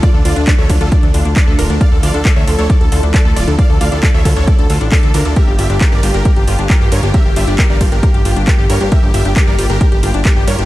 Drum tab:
RD |--x---x---x---x-|--x---x---x---x-|--x---x---x---x-|--x---x---x---x-|
HH |x-oxx-oxxxoxx-ox|x-oxx-oxxxoxx-ox|x-oxx-oxxxoxoxox|x-oxx-oxxxoxx-ox|
CP |----x-------x---|----x-------x---|----x-------x---|----x-------x---|
BD |o---o-o-o---o---|o---o---o---o---|o---o-o-o---o---|o---o---o---o---|

RD |--x---x---x---x-|--x---x---x---x-|
HH |x-oxx-oxxxoxx-ox|x-oxx-oxxxoxx-ox|
CP |----x-------x---|----x-------x---|
BD |o---o-o-o---o---|o---o---o---o---|